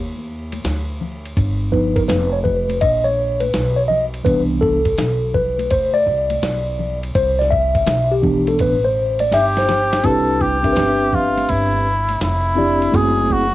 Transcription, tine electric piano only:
1.72 2.25 F3 medium
1.72 2.25 B3 medium
1.72 2.25 D#4 medium
1.72 1.97 B4 medium
1.96 2.02 A#4 medium
2.08 2.31 B4 medium
2.33 2.38 C#5 medium
2.44 2.82 B4 medium
2.81 3.06 D#5 medium
3.04 3.42 C#5 medium
3.40 3.78 B4 medium
3.76 3.82 C#5 medium
3.88 4.05 D#5 medium
4.24 4.77 E3 medium
4.24 4.78 B3 medium
4.24 4.78 D4 medium
4.24 4.41 B4 loud
4.61 5.36 A4 medium
5.34 5.72 B4 medium
5.71 5.95 C5 loud
5.94 6.99 D5 loud
7.15 7.40 C5 loud
7.39 7.52 D5 medium
7.51 8.13 E5 loud
8.12 8.49 G4 medium
8.22 8.75 E3 medium
8.22 8.76 B3 medium
8.22 8.76 D4 medium
8.48 8.60 A4 medium
8.61 8.85 B4 loud
8.85 9.21 C5 medium
9.20 9.33 D5 medium
9.34 9.44 E5 loud
9.58 10.02 C5 medium
10.03 10.56 C4 medium
10.03 10.56 D4 medium
10.03 10.56 E4 medium
10.03 10.57 G4 medium
10.03 10.57 B4 medium
10.63 11.87 C4 medium
10.63 11.87 D4 medium
10.63 11.88 G4 medium
10.63 10.70 A#4 medium
10.63 11.87 E5 medium
10.73 11.91 B4 medium
12.55 12.90 C4 medium
12.55 12.90 D4 medium
12.55 12.90 E4 medium
12.55 12.91 G4 medium
12.55 12.91 D5 medium
12.92 13.45 A3 medium
12.92 13.45 C4 medium
12.92 13.45 E4 medium
12.92 13.46 F#4 medium
12.92 13.46 G#4 medium

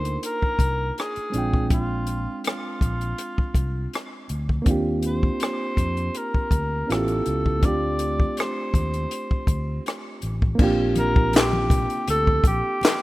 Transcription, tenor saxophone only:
0.00 0.19 C5 medium
0.25 0.94 A#4 loud
1.00 1.68 G#4 medium
1.73 2.42 F4 medium
2.48 3.90 F4 medium
5.07 6.19 C5 medium
6.17 6.93 A#4 medium
6.91 7.66 A4 medium
7.65 8.41 D5 loud
8.39 9.86 C5 medium
10.99 11.37 A#4 loud
11.35 12.08 G4 loud
12.10 12.43 A4 loud
12.47 13.02 G4 loud

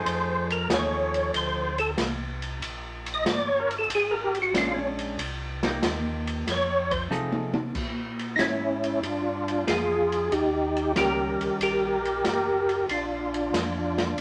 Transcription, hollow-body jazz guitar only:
0.00 0.66 F3 medium
0.00 0.66 A3 medium
0.00 0.66 D#4 medium
0.00 0.66 G#4 medium
0.70 1.69 F3 medium
0.70 1.69 A3 medium
0.70 1.70 D#4 medium
0.70 1.70 G#4 medium
4.55 5.19 G#3 medium
4.55 5.19 C#4 medium
4.55 5.19 D4 medium
5.63 6.43 A#3 medium
5.63 6.43 D#4 medium
5.63 6.44 G4 medium
7.11 7.51 F3 medium
7.11 7.51 A3 medium
7.11 7.51 D#4 medium
7.11 7.51 G#4 medium
10.96 11.96 D#3 medium
10.96 11.96 G3 medium
10.96 11.96 C#4 medium

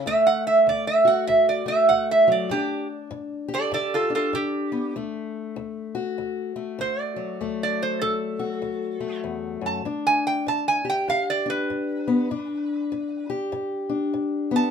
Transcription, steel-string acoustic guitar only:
0.06 0.62 D2 medium
0.06 1.65 A3 medium
0.67 1.23 D2 medium
1.05 2.48 F#4 medium
1.28 1.85 D2 medium
1.66 2.51 A3 medium
1.90 2.46 D2 medium
2.28 2.51 F#3 medium
2.49 3.06 G2 medium
2.49 4.09 D4 medium
3.11 3.68 G2 medium
3.48 4.92 G4 medium
3.72 4.29 G2 medium
4.10 4.96 D4 medium
4.33 4.90 G2 medium
4.72 4.93 B3 medium
4.96 5.52 D2 medium
4.96 6.55 A3 medium
5.56 6.13 D2 medium
5.95 7.38 F#4 medium
6.18 6.74 D2 medium
6.56 7.40 A3 medium
6.79 7.35 D2 medium
7.16 9.85 F#3 medium
7.41 7.97 D2 medium
7.41 8.99 A3 medium
8.02 8.58 D2 medium
8.39 9.83 F#4 medium
8.62 9.19 D2 medium
9.00 9.85 A3 medium
9.23 9.61 E2 medium
9.61 9.85 F#2 medium
9.85 10.42 G2 medium
9.85 11.45 D4 medium
10.46 11.03 G2 medium
10.85 12.28 G4 medium
11.08 11.64 G2 medium
11.46 12.31 D4 medium
11.70 12.26 G2 medium
12.08 12.28 B3 medium
12.31 12.87 G2 medium
12.31 13.89 D4 medium
12.92 13.48 G2 medium
13.30 14.71 G4 medium
13.52 14.09 G2 medium
13.89 14.71 D4 medium
14.14 14.70 G2 medium
14.51 14.71 B3 medium

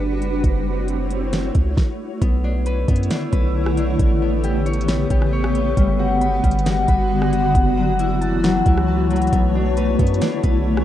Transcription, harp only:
2.21 2.88 B3 medium
2.44 3.10 D4 medium
2.66 3.32 B4 medium
2.89 4.21 B3 medium
3.10 3.77 D4 medium
3.32 5.37 B4 medium
3.77 4.72 D4 medium
4.22 4.88 B3 medium
4.44 5.10 G4 medium
4.66 5.32 C#5 medium
4.88 5.55 B3 medium
5.11 6.05 G4 medium
5.33 7.24 C#5 medium
5.55 8.66 B3 medium
5.77 6.42 G3 medium
5.99 6.66 F#4 medium
6.21 6.88 B5 medium
6.44 7.60 G3 medium
6.66 7.32 F#4 medium
6.89 8.24 B5 medium
7.33 9.76 F#4 medium
7.77 8.42 F#3 medium
7.99 8.66 E4 medium
8.21 8.88 A5 medium
8.43 9.09 F#3 medium
8.67 10.85 E4 medium
8.88 10.33 A5 medium
9.11 9.38 F#3 medium
9.33 9.99 B3 loud
9.55 10.21 D4 medium
9.77 10.43 B4 medium
10.00 10.85 B3 medium
10.21 10.85 D4 medium
10.43 10.85 B4 medium

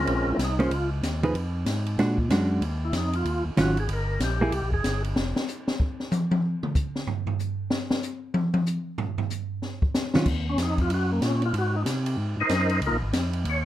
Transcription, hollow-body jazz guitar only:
0.59 0.70 A#3 medium
0.59 0.70 C#4 medium
0.59 0.71 G#4 medium
0.59 0.71 C5 medium
1.23 1.34 F3 medium
1.23 1.34 D#4 medium
1.23 1.34 G#4 medium
1.23 1.34 B4 medium
1.99 2.17 G#3 medium
1.99 2.17 D4 medium
1.99 2.17 F#4 medium
2.31 2.62 G#3 medium
2.31 2.63 D4 soft
2.31 2.63 F#4 medium
3.57 3.75 D#3 medium
3.57 3.75 F#3 medium
3.57 3.75 C#4 medium
3.57 3.76 F4 medium
4.41 4.52 A#3 medium
4.41 4.52 E4 medium
4.41 4.52 G#4 medium
10.15 10.25 D#3 medium
10.15 10.26 F#3 medium
10.15 10.26 C#4 medium
10.15 10.26 F4 medium

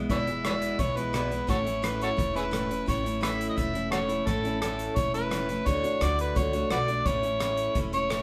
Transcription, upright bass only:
0.10 0.70 E1 medium
0.79 1.40 B1 medium
1.49 2.09 A1 medium
2.18 2.79 E1 medium
2.88 3.49 A1 medium
3.57 4.18 E1 medium
4.27 4.88 A1 medium
4.96 5.57 E1 medium
5.67 5.97 D2 medium
6.01 6.31 D2 medium
6.36 6.66 C#2 medium
6.72 7.01 B1 medium
7.06 7.67 A1 medium
7.75 8.22 E1 medium

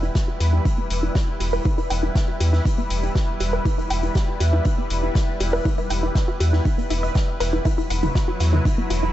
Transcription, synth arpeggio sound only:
0.03 0.11 E4 medium
0.15 0.27 G4 medium
0.28 0.33 F#4 medium
0.40 0.45 G4 medium
0.53 0.58 E4 medium
0.65 0.73 D#4 medium
0.78 0.86 B3 medium
1.03 1.11 E4 medium
1.15 1.27 G4 medium
1.40 1.45 G4 medium
1.53 1.65 B4 loud
1.65 1.73 E4 loud
1.78 1.86 E4 loud
1.90 1.98 G5 loud
2.03 2.11 E4 medium
2.15 2.27 G4 medium
2.28 2.33 F#4 medium
2.40 2.45 G4 medium
2.53 2.58 E4 medium
2.65 2.73 D#4 medium
2.78 2.86 B3 medium
3.03 3.11 E4 medium
3.15 3.27 G4 medium
3.40 3.45 G4 medium
3.53 3.65 B4 loud
3.65 3.73 E4 loud
3.78 3.86 E4 loud
3.90 3.98 G5 loud
4.03 4.11 E4 medium
4.15 4.27 G4 medium
4.28 4.33 F#4 medium
4.40 4.45 G4 medium
4.53 4.58 E4 medium
4.65 4.74 D#4 medium
4.78 4.86 B3 medium
5.03 5.11 E4 medium
5.15 5.27 G4 medium
5.41 5.45 G4 medium
5.53 5.65 B4 loud
5.65 5.73 E4 loud
5.78 5.86 E4 loud
5.90 5.98 G5 loud
6.03 6.11 E4 medium
6.15 6.27 G4 medium
6.28 6.33 F#4 medium
6.40 6.45 G4 medium
6.53 6.58 E4 medium
6.65 6.73 D#4 medium
6.78 6.86 B3 medium
6.90 7.02 E4 loud
7.03 7.15 E5 loud
7.15 7.27 G5 medium
7.40 7.52 B4 medium
7.53 7.58 E4 medium
7.65 7.73 E4 loud
7.78 7.86 E4 loud
7.90 7.98 F#5 loud
8.03 8.11 E4 medium
8.15 8.27 F#4 medium
8.28 8.33 F#4 medium
8.40 8.45 F#4 medium
8.53 8.58 E4 medium
8.65 8.73 D#4 medium
8.78 8.86 B3 medium
8.90 9.02 F#4 medium
9.03 9.11 E4 medium

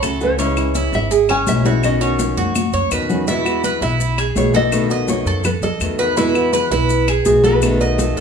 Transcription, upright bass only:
0.02 0.87 C#2 medium
0.92 1.43 G#1 medium
1.47 2.31 B1 medium
2.37 2.71 F#2 medium
2.73 2.90 F#2 medium
2.91 3.76 E2 medium
3.81 4.32 B1 medium
4.36 5.21 B1 medium
5.25 5.60 F#2 medium
5.62 5.79 F#2 medium
5.81 6.65 E2 medium
6.71 7.22 B1 medium
7.25 8.11 B1 medium
8.16 8.20 F#2 medium

